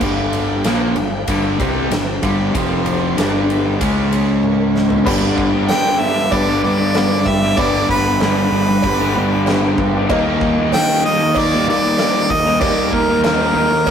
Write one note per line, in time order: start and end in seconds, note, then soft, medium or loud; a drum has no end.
0.00 0.61 G1 loud
0.00 0.64 G2 medium
0.00 0.65 D3 medium
0.00 0.65 G3 loud
0.00 2.51 D4 medium
0.00 2.51 G4 medium
0.00 2.51 G5 medium
0.00 2.51 B5 medium
0.00 kick loud
0.00 crash medium
0.33 ride medium
0.64 0.94 A#1 loud
0.64 0.96 A#2 medium
0.64 0.96 F3 loud
0.64 0.96 A#3 loud
0.64 snare loud
0.64 ride medium
0.95 1.25 G1 medium
0.95 1.22 G2 medium
0.95 1.22 D3 medium
0.95 ride medium
1.28 1.57 G1 loud
1.28 1.59 G2 medium
1.28 1.59 D3 medium
1.28 1.58 G3 medium
1.28 kick loud
1.28 ride loud
1.59 1.89 C2 medium
1.59 1.90 C3 medium
1.59 1.90 G3 medium
1.59 1.90 C4 medium
1.59 kick loud
1.59 ride medium
1.90 2.20 G1 medium
1.90 2.16 G2 medium
1.90 2.16 D3 medium
1.90 snare loud
1.90 ride loud
2.22 2.52 G1 medium
2.22 2.53 G2 medium
2.22 2.53 D3 loud
2.22 2.54 G3 loud
2.22 kick medium
2.22 ride medium
2.53 3.14 F1 medium
2.53 3.16 F2 loud
2.53 3.17 C3 medium
2.53 3.17 F3 loud
2.53 3.17 C4 medium
2.53 3.16 F4 medium
2.53 3.16 C5 medium
2.53 kick loud
2.53 ride medium
2.86 ride medium
3.17 3.77 G1 medium
3.17 3.80 G2 medium
3.17 3.80 D3 loud
3.17 3.80 G3 loud
3.17 3.80 B3 medium
3.17 3.80 D4 medium
3.17 3.80 G4 medium
3.17 3.80 D5 medium
3.17 snare loud
3.17 ride medium
3.50 ride medium
3.80 5.03 C#2 loud
3.80 5.06 C#3 medium
3.80 5.06 G#3 loud
3.80 5.06 C#4 medium
3.80 5.06 G#4 medium
3.80 5.06 C#5 medium
3.80 kick loud
3.80 ride loud
4.13 ride medium
4.43 high tom medium
4.76 4.99 C4 medium
4.76 snare medium
4.80 5.01 D4 medium
4.80 5.02 E4 medium
4.85 5.04 F4 medium
4.85 5.05 G4 medium
4.90 5.06 A4 medium
4.90 5.08 B4 medium
4.90 floor tom medium
4.96 5.09 C5 medium
4.96 5.05 D5 medium
5.01 5.56 B3 loud
5.01 5.11 E5 medium
5.01 5.13 F5 medium
5.05 5.36 G1 loud
5.05 5.69 G2 medium
5.05 5.69 D3 loud
5.05 5.55 G3 loud
5.05 7.56 B3 medium
5.05 5.54 B3 loud
5.05 5.56 D4 loud
5.05 7.56 D4 medium
5.05 5.53 D4 medium
5.05 5.57 G4 loud
5.05 7.56 G4 medium
5.05 5.56 B4 loud
5.05 7.56 D5 medium
5.05 kick loud
5.05 crash loud
5.05 cowbell medium
5.05 crash medium
5.38 5.68 G1 loud
5.38 kick medium
5.53 5.70 G3 medium
5.53 5.71 B3 medium
5.53 5.72 D4 medium
5.68 6.95 G2 loud
5.68 6.00 D3 loud
5.68 6.01 G3 loud
5.68 6.19 B3 medium
5.68 6.02 B3 loud
5.68 6.20 D4 medium
5.68 6.20 G4 medium
5.68 6.20 B4 medium
5.68 6.01 G5 loud
5.68 snare loud
5.68 cowbell medium
5.68 crash medium
5.72 6.03 D4 loud
6.00 6.17 D3 medium
6.00 6.17 G3 medium
6.00 6.16 B3 medium
6.00 6.16 D4 medium
6.00 6.34 E5 loud
6.17 muted overdriven electric guitar stroke medium
6.17 snare soft
6.31 6.62 G1 loud
6.31 7.55 G2 medium
6.31 7.57 D3 medium
6.31 7.59 G3 medium
6.31 6.57 B3 medium
6.31 6.58 D4 medium
6.31 6.58 G4 medium
6.31 6.58 B4 medium
6.31 6.63 D5 loud
6.31 kick medium
6.31 cowbell loud
6.31 crash medium
6.48 6.65 G3 medium
6.48 6.65 B3 medium
6.48 6.66 D4 medium
6.62 7.23 G2 medium
6.62 6.95 D3 medium
6.62 6.82 G3 medium
6.62 6.88 B3 medium
6.62 6.89 D4 medium
6.62 6.89 G4 medium
6.62 6.89 B4 medium
6.62 7.29 D5 loud
6.66 6.81 B3 medium
6.66 6.79 D4 medium
6.80 6.96 G3 medium
6.80 6.96 B3 medium
6.80 6.96 D4 medium
6.94 7.57 G2 medium
6.94 7.26 D3 loud
6.94 7.27 G3 loud
6.94 7.45 B3 medium
6.94 7.26 B3 loud
6.94 7.46 D4 medium
6.94 7.26 D4 loud
6.94 7.46 G4 medium
6.94 7.46 B4 medium
6.94 snare loud
6.94 cowbell medium
6.94 crash medium
7.26 7.56 G1 medium
7.26 7.59 E5 loud
7.26 muted overdriven electric guitar stroke soft
7.26 kick medium
7.43 7.59 G3 medium
7.43 7.59 B3 medium
7.43 7.59 D4 medium
7.57 7.88 G1 loud
7.57 8.21 G2 loud
7.57 8.21 D3 loud
7.57 8.07 G3 loud
7.57 8.08 B3 medium
7.57 10.07 B3 medium
7.57 8.06 B3 loud
7.57 10.07 D4 medium
7.57 8.08 D4 loud
7.57 8.05 D4 loud
7.57 10.07 G4 medium
7.57 8.09 G4 medium
7.57 8.09 B4 loud
7.57 7.89 D5 loud
7.57 kick loud
7.57 cowbell loud
7.57 crash medium
7.89 8.49 G1 loud
7.89 8.19 B4 loud
7.89 kick medium
8.06 8.22 G3 medium
8.06 8.23 B3 medium
8.06 8.23 D4 medium
8.20 8.85 G2 loud
8.20 8.51 D3 loud
8.20 8.53 G3 loud
8.20 8.71 B3 medium
8.20 8.53 B3 loud
8.20 8.72 D4 medium
8.20 8.72 G4 medium
8.20 9.75 B4 medium
8.20 8.72 B4 medium
8.20 snare loud
8.20 cowbell medium
8.20 crash medium
8.24 8.53 D4 loud
8.52 8.82 G1 loud
8.52 8.69 D3 medium
8.52 8.69 G3 medium
8.52 8.68 B3 medium
8.52 8.68 D4 medium
8.69 muted overdriven electric guitar stroke soft
8.69 snare soft
8.82 9.74 G1 loud
8.82 10.07 G2 medium
8.82 10.08 D3 medium
8.82 10.11 G3 medium
8.82 9.09 B3 medium
8.82 9.09 D4 medium
8.82 9.09 G4 medium
8.82 9.10 B4 medium
8.82 kick loud
8.82 cowbell loud
8.82 crash medium
9.00 9.16 G3 medium
9.00 9.16 B3 medium
9.00 9.17 D4 medium
9.14 9.48 D3 medium
9.14 9.34 G3 medium
9.14 9.40 B3 medium
9.14 9.32 B3 medium
9.14 9.40 D4 medium
9.14 9.41 G4 medium
9.14 9.41 B4 medium
9.18 9.31 D4 medium
9.32 9.49 G3 medium
9.32 9.48 B3 medium
9.32 9.49 D4 medium
9.46 10.08 G2 loud
9.46 9.79 D3 loud
9.46 9.81 G3 loud
9.46 9.97 B3 loud
9.46 9.80 B3 loud
9.46 9.97 D4 medium
9.46 9.98 G4 loud
9.46 9.98 B4 loud
9.46 snare loud
9.46 cowbell medium
9.46 crash medium
9.50 9.80 D4 loud
9.78 10.08 G1 loud
9.78 muted overdriven electric guitar stroke soft
9.78 kick medium
9.96 10.12 G3 medium
9.96 10.10 B3 medium
9.96 10.09 D4 medium
10.09 10.40 D#2 loud
10.09 10.73 D#3 medium
10.09 10.60 G3 medium
10.09 10.60 A#3 loud
10.09 12.59 A#3 medium
10.09 10.59 A#3 loud
10.09 10.60 D#4 loud
10.09 12.59 D#4 medium
10.09 12.59 G4 medium
10.09 10.60 G4 loud
10.09 10.61 A#4 loud
10.09 12.59 G5 medium
10.09 kick loud
10.09 cowbell loud
10.09 crash medium
10.14 10.58 D#4 loud
10.41 10.71 D#2 loud
10.41 kick medium
10.59 10.74 G3 medium
10.59 10.76 A#3 medium
10.59 10.76 D#4 medium
10.72 11.05 D#3 loud
10.72 11.06 G3 loud
10.72 11.22 A#3 medium
10.72 11.23 D#4 medium
10.72 11.23 G4 medium
10.72 11.23 A#4 medium
10.72 11.02 G5 loud
10.72 snare loud
10.72 cowbell medium
10.72 crash medium
10.76 11.07 A#3 loud
10.76 11.07 D#4 loud
11.05 11.52 D#3 medium
11.05 11.22 G3 medium
11.05 11.21 A#3 medium
11.05 11.20 D#4 medium
11.05 11.40 D#5 loud
11.21 muted overdriven electric guitar stroke medium
11.35 11.65 D#2 loud
11.35 12.59 D#3 medium
11.35 11.60 A#3 medium
11.35 12.60 A#3 medium
11.35 11.61 D#4 medium
11.35 12.61 D#4 medium
11.35 11.61 G4 medium
11.35 11.61 A#4 medium
11.35 11.69 D5 loud
11.35 kick medium
11.35 cowbell loud
11.35 crash medium
11.52 11.69 G3 medium
11.52 11.68 A#3 medium
11.52 11.69 D#4 medium
11.67 12.26 D#3 medium
11.67 11.98 D#3 medium
11.67 11.86 G3 medium
11.67 11.92 A#3 medium
11.67 11.84 A#3 medium
11.67 11.92 D#4 medium
11.67 11.82 D#4 loud
11.67 11.93 G4 medium
11.67 11.93 A#4 medium
11.67 12.32 D5 loud
11.84 12.00 G3 medium
11.84 12.00 A#3 medium
11.84 12.01 D#4 medium
11.97 12.30 D#3 medium
11.97 12.31 G3 loud
11.97 12.48 A#3 medium
11.97 12.30 A#3 medium
11.97 12.48 D#4 medium
11.97 12.49 G4 medium
11.97 12.49 A#4 medium
11.97 snare loud
11.97 cowbell medium
11.97 crash medium
12.02 12.30 D#4 loud
12.30 12.59 D#2 medium
12.30 12.61 D#5 loud
12.30 muted overdriven electric guitar stroke soft
12.30 kick medium
12.46 12.61 G3 medium
12.46 12.61 A#3 medium
12.46 12.62 D#4 medium
12.60 12.91 D#2 loud
12.60 13.22 D#3 loud
12.60 13.10 G3 loud
12.60 13.12 A#3 medium
12.60 13.08 A#3 loud
12.60 13.11 D#4 medium
12.60 13.07 D#4 loud
12.60 13.12 G4 medium
12.60 13.91 G4 medium
12.60 13.12 A#4 loud
12.60 13.91 A#4 medium
12.60 12.95 D5 loud
12.60 13.91 G5 medium
12.60 kick loud
12.60 cowbell loud
12.60 crash medium
12.64 13.91 D#4 medium
12.92 13.52 D#2 medium
12.92 13.23 A#4 medium
12.92 kick medium
13.08 13.24 G3 medium
13.08 13.24 A#3 medium
13.08 13.24 D#4 medium
13.23 13.54 D#3 medium
13.23 13.56 G3 loud
13.23 13.74 A#3 medium
13.23 13.56 A#3 loud
13.23 13.74 D#4 medium
13.23 13.57 D#4 loud
13.23 13.74 G4 medium
13.23 13.91 A#4 medium
13.23 13.74 A#4 medium
13.23 snare loud
13.23 cowbell medium
13.23 crash medium
13.55 13.85 D#2 loud
13.55 13.91 D#3 medium
13.55 13.71 G3 medium
13.55 13.70 A#3 medium
13.55 13.70 D#4 loud
13.71 muted overdriven electric guitar stroke medium
13.85 13.91 D#2 loud
13.85 13.91 D#3 medium
13.85 13.91 A#3 medium
13.85 13.91 D#4 medium
13.85 13.91 G4 medium
13.85 13.91 A#4 medium
13.85 kick loud
13.85 cowbell loud
13.85 crash medium